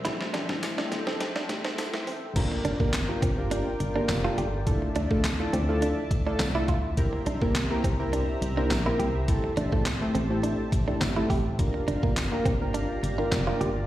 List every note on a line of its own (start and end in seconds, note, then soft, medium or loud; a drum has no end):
0.00 0.17 C2 medium
0.00 2.32 C5 medium
0.00 2.32 E5 medium
0.05 0.28 G3 medium
0.05 0.29 A3 medium
0.05 0.29 C4 medium
0.05 0.14 E4 medium
0.05 0.29 E4 loud
0.05 2.34 A4 medium
0.05 0.16 A4 loud
0.05 2.34 G5 medium
0.05 kick loud
0.05 snare loud
0.05 closed hi-hat medium
0.21 0.30 C5 medium
0.21 snare medium
0.34 0.45 A1 loud
0.34 0.43 D4 medium
0.34 0.45 G5 medium
0.34 snare loud
0.34 closed hi-hat medium
0.49 0.79 A1 medium
0.49 1.03 G3 medium
0.49 1.03 A3 medium
0.49 1.03 C4 medium
0.49 1.03 E4 loud
0.49 0.59 A5 medium
0.49 muted clean electric guitar stroke soft
0.49 kick loud
0.49 snare loud
0.63 snare loud
0.63 closed hi-hat loud
0.63 tambourine medium
0.78 0.86 D4 medium
0.78 0.88 C5 medium
0.78 snare loud
0.92 1.32 G1 loud
0.92 muted clean electric guitar stroke soft
0.92 snare loud
0.92 closed hi-hat medium
1.07 1.15 C4 medium
1.07 1.17 C5 medium
1.07 snare loud
1.20 1.31 G5 medium
1.20 snare loud
1.20 closed hi-hat loud
1.36 1.44 D4 medium
1.36 snare loud
1.49 1.90 A1 medium
1.49 1.96 G3 medium
1.49 1.96 A3 medium
1.49 1.96 C4 medium
1.49 1.96 E4 loud
1.49 1.60 G5 medium
1.49 muted clean electric guitar stroke soft
1.49 kick medium
1.49 snare loud
1.49 closed hi-hat medium
1.65 1.73 C4 medium
1.65 1.74 C5 medium
1.65 snare loud
1.78 1.89 A4 medium
1.78 muted clean electric guitar stroke soft
1.78 snare loud
1.78 closed hi-hat medium
1.78 tambourine medium
1.94 2.02 A3 medium
1.94 snare loud
2.07 2.27 A1 loud
2.07 2.16 C4 medium
2.07 open hi-hat medium
2.36 2.59 A#3 medium
2.36 2.59 D4 medium
2.36 2.59 F4 medium
2.36 4.64 F4 medium
2.36 2.59 G4 medium
2.36 4.64 A#4 medium
2.36 2.59 A#4 loud
2.36 6.94 D5 medium
2.36 4.64 G5 medium
2.36 kick loud
2.36 closed hi-hat medium
2.36 crash loud
2.52 muted clean electric guitar stroke soft
2.65 2.76 G1 medium
2.65 2.74 D4 medium
2.65 closed hi-hat medium
2.80 3.10 G1 medium
2.80 2.95 A#3 medium
2.80 2.88 A#3 medium
2.80 2.95 D4 medium
2.80 2.95 F4 medium
2.80 2.95 G4 medium
2.80 2.95 A#4 loud
2.80 kick loud
2.93 snare loud
2.93 clap loud
2.93 closed hi-hat loud
2.93 tambourine loud
3.09 3.23 A#3 medium
3.09 3.23 D4 medium
3.09 3.23 F4 medium
3.09 3.23 G4 medium
3.09 3.23 A#4 loud
3.22 3.63 G1 loud
3.22 3.32 C4 medium
3.22 kick loud
3.22 closed hi-hat medium
3.38 3.68 A#3 medium
3.38 3.68 D4 medium
3.38 3.68 F4 medium
3.38 3.68 G4 medium
3.38 3.69 A#4 loud
3.51 3.60 D4 medium
3.51 closed hi-hat loud
3.80 4.01 G1 medium
3.80 muted clean electric guitar stroke soft
3.80 closed hi-hat medium
3.95 4.10 A#3 medium
3.95 4.10 D4 medium
3.95 4.04 D4 medium
3.95 4.10 F4 medium
3.95 4.10 G4 medium
3.95 4.10 A#4 loud
4.09 4.29 F1 loud
4.09 muted clean electric guitar stroke soft
4.09 snare medium
4.09 clap loud
4.09 closed hi-hat medium
4.09 tambourine medium
4.24 4.47 A#3 medium
4.24 4.47 D4 medium
4.24 4.47 F4 medium
4.24 4.33 F4 medium
4.24 4.47 G4 medium
4.24 4.47 A4 loud
4.38 4.78 G1 loud
4.38 4.47 G4 medium
4.38 closed hi-hat medium
4.66 6.95 F3 medium
4.66 4.90 A3 medium
4.66 4.90 D4 medium
4.66 4.90 E4 medium
4.66 4.90 F4 medium
4.66 4.90 A4 loud
4.66 11.55 E5 medium
4.66 6.95 A5 medium
4.66 kick loud
4.66 closed hi-hat medium
4.82 muted clean electric guitar stroke medium
4.96 5.07 D2 loud
4.96 5.05 D4 medium
4.96 closed hi-hat medium
5.10 5.41 D2 medium
5.10 5.25 A3 medium
5.10 5.19 A3 medium
5.10 5.25 D4 medium
5.10 5.25 E4 medium
5.10 5.25 F4 medium
5.10 5.25 A4 loud
5.10 kick loud
5.24 snare loud
5.24 clap loud
5.24 closed hi-hat medium
5.24 tambourine loud
5.40 5.54 A3 medium
5.40 5.54 D4 medium
5.40 5.54 E4 medium
5.40 5.54 F4 medium
5.40 5.54 A4 medium
5.53 5.94 D2 loud
5.53 5.62 C4 medium
5.53 closed hi-hat medium
5.68 5.99 A3 medium
5.68 5.99 D4 medium
5.68 5.99 E4 medium
5.68 5.99 F4 medium
5.68 5.99 A4 loud
5.82 5.91 D4 medium
5.82 closed hi-hat loud
6.11 6.31 D2 medium
6.11 muted clean electric guitar stroke soft
6.11 kick loud
6.11 closed hi-hat medium
6.26 6.41 A3 medium
6.26 6.41 D4 medium
6.26 6.35 D4 medium
6.26 6.41 E4 medium
6.26 6.41 F4 medium
6.26 6.41 A4 loud
6.39 6.60 C2 loud
6.39 muted clean electric guitar stroke soft
6.39 snare medium
6.39 clap loud
6.39 closed hi-hat medium
6.39 tambourine medium
6.55 6.78 A3 medium
6.55 6.78 D4 medium
6.55 6.78 E4 medium
6.55 6.63 E4 medium
6.55 6.78 F4 medium
6.55 6.78 A4 loud
6.68 7.09 D2 loud
6.68 6.78 F4 medium
6.68 kick medium
6.68 closed hi-hat medium
6.97 7.21 A#3 medium
6.97 7.21 C4 medium
6.97 7.21 E4 medium
6.97 9.26 G4 medium
6.97 7.21 G4 medium
6.97 7.21 A#4 loud
6.97 11.55 C5 medium
6.97 9.26 A#5 medium
6.97 kick loud
6.97 closed hi-hat medium
7.13 muted clean electric guitar stroke medium
7.26 7.37 C2 medium
7.26 7.36 D4 medium
7.26 closed hi-hat medium
7.42 7.71 C2 medium
7.42 7.56 A#3 medium
7.42 7.50 A#3 medium
7.42 7.56 C4 medium
7.42 7.56 E4 medium
7.42 7.56 G4 medium
7.42 7.56 A#4 loud
7.42 kick medium
7.55 snare loud
7.55 clap loud
7.55 closed hi-hat medium
7.55 tambourine loud
7.70 7.85 A#3 medium
7.70 7.85 C4 medium
7.70 7.85 E4 medium
7.70 7.85 G4 medium
7.70 7.85 A#4 loud
7.84 8.25 C2 loud
7.84 7.93 C4 medium
7.84 kick medium
7.84 closed hi-hat medium
7.99 8.30 A#3 medium
7.99 8.30 C4 medium
7.99 8.30 E4 medium
7.99 8.30 G4 medium
7.99 8.30 A#4 loud
8.13 8.22 D4 medium
8.13 closed hi-hat loud
8.42 8.62 C2 medium
8.42 muted clean electric guitar stroke soft
8.42 closed hi-hat medium
8.57 8.72 A#3 medium
8.57 8.72 C4 medium
8.57 8.65 D4 medium
8.57 8.72 E4 medium
8.57 8.72 G4 medium
8.57 8.72 A#4 loud
8.70 8.91 A#1 loud
8.70 muted clean electric guitar stroke soft
8.70 snare medium
8.70 clap loud
8.70 closed hi-hat medium
8.70 tambourine medium
8.86 9.08 A#3 medium
8.86 9.08 C4 medium
8.86 9.09 E4 medium
8.86 8.94 E4 medium
8.86 9.09 G4 medium
8.86 9.09 A#4 loud
8.99 9.40 C2 loud
8.99 9.09 G4 medium
8.99 closed hi-hat medium
9.28 9.52 A3 medium
9.28 9.52 C4 medium
9.28 9.52 E4 medium
9.28 9.52 G4 medium
9.28 11.57 G4 medium
9.28 9.52 A4 loud
9.28 11.57 A5 medium
9.28 kick loud
9.28 closed hi-hat medium
9.44 muted clean electric guitar stroke soft
9.57 9.68 A1 loud
9.57 9.66 D4 medium
9.57 closed hi-hat medium
9.72 10.02 A1 medium
9.72 9.87 A3 medium
9.72 9.81 A3 medium
9.72 9.87 C4 medium
9.72 9.87 E4 medium
9.72 9.87 G4 medium
9.72 9.87 A4 loud
9.72 kick medium
9.85 snare loud
9.85 clap loud
9.85 closed hi-hat loud
9.85 tambourine loud
10.01 10.16 A3 medium
10.01 10.16 C4 medium
10.01 10.16 E4 medium
10.01 10.16 G4 medium
10.01 10.16 A4 loud
10.15 10.56 A1 loud
10.15 10.24 C4 medium
10.15 closed hi-hat medium
10.30 10.61 A3 medium
10.30 10.61 C4 medium
10.30 10.61 E4 medium
10.30 10.61 G4 medium
10.30 10.61 A4 loud
10.43 10.53 D4 medium
10.43 closed hi-hat loud
10.72 10.93 A1 medium
10.72 muted clean electric guitar stroke soft
10.72 kick loud
10.72 closed hi-hat medium
10.87 11.02 A3 medium
10.87 11.02 C4 medium
10.87 10.96 D4 medium
10.87 11.02 E4 medium
10.87 11.02 G4 medium
10.87 11.02 A4 loud
11.01 11.22 G1 loud
11.01 muted clean electric guitar stroke soft
11.01 snare medium
11.01 clap loud
11.01 closed hi-hat medium
11.01 tambourine medium
11.16 11.39 A3 medium
11.16 11.39 C4 medium
11.16 11.25 E4 medium
11.16 11.39 E4 medium
11.16 11.39 G4 medium
11.16 11.39 A4 loud
11.30 11.71 A1 medium
11.30 11.39 G4 medium
11.30 kick medium
11.30 open hi-hat medium
11.59 11.82 A#3 medium
11.59 11.82 D4 medium
11.59 11.82 F4 medium
11.59 13.87 G4 medium
11.59 11.83 G4 medium
11.59 11.83 A#4 loud
11.59 13.87 D5 medium
11.59 13.87 F5 medium
11.59 13.87 A#5 medium
11.59 kick loud
11.59 closed hi-hat medium
11.74 muted clean electric guitar stroke soft
11.88 11.99 G1 medium
11.88 11.97 D4 medium
11.88 closed hi-hat medium
12.03 12.33 G1 medium
12.03 12.17 A#3 medium
12.03 12.11 A#3 medium
12.03 12.18 D4 medium
12.03 12.18 F4 medium
12.03 12.18 G4 medium
12.03 12.18 A#4 loud
12.03 kick loud
12.16 snare loud
12.16 clap loud
12.16 closed hi-hat medium
12.16 tambourine loud
12.32 12.46 A#3 medium
12.32 12.46 D4 medium
12.32 12.46 F4 medium
12.32 12.46 G4 medium
12.32 12.47 A#4 loud
12.46 12.86 G1 loud
12.46 12.55 C4 medium
12.46 kick medium
12.46 closed hi-hat medium
12.61 12.92 A#3 medium
12.61 12.92 D4 medium
12.61 12.92 F4 medium
12.61 12.92 G4 medium
12.61 12.92 A#4 loud
12.74 12.83 D4 medium
12.74 closed hi-hat loud
13.03 13.23 G1 medium
13.03 muted clean electric guitar stroke soft
13.03 closed hi-hat medium
13.18 13.33 A#3 medium
13.18 13.26 D4 medium
13.18 13.33 D4 medium
13.18 13.33 F4 medium
13.18 13.33 G4 medium
13.18 13.33 A#4 loud
13.32 13.52 F1 loud
13.32 muted clean electric guitar stroke soft
13.32 snare medium
13.32 clap loud
13.32 closed hi-hat medium
13.32 tambourine medium
13.47 13.70 A#3 medium
13.47 13.70 D4 medium
13.47 13.55 F4 medium
13.47 13.70 F4 medium
13.47 13.70 G4 medium
13.47 13.70 A#4 loud
13.61 13.87 G1 loud
13.61 13.70 G4 medium
13.61 closed hi-hat medium